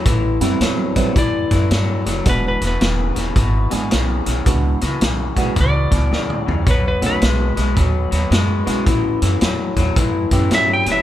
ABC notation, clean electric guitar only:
X:1
M:4/4
L:1/8
Q:"Swing" 1/4=109
K:Emix
V:1 name="Clean electric guitar" clef=bass
[A,,E,] [A,,E,] [A,,F,] [A,,F,] [A,,E,] [A,,E,] [A,,F,] [A,,F,] | [E,,B,,] [E,,B,,] [E,,C,] [E,,C,] [E,,B,,] [E,,B,,] [E,,C,] [E,,C,] | [E,,B,,] [E,,B,,] [E,,C,] [E,,C,] [E,,B,,] [E,,B,,] [E,,C,] [E,,C,] | [B,,F,] [B,,F,] [B,,G,] [B,,G,] [B,,F,] [B,,F,] [B,,G,] [B,,G,] |
[A,,E,] [A,,E,] [A,,F,] [A,,F,] [A,,E,] [A,,E,] [A,,F,] [A,,F,] |]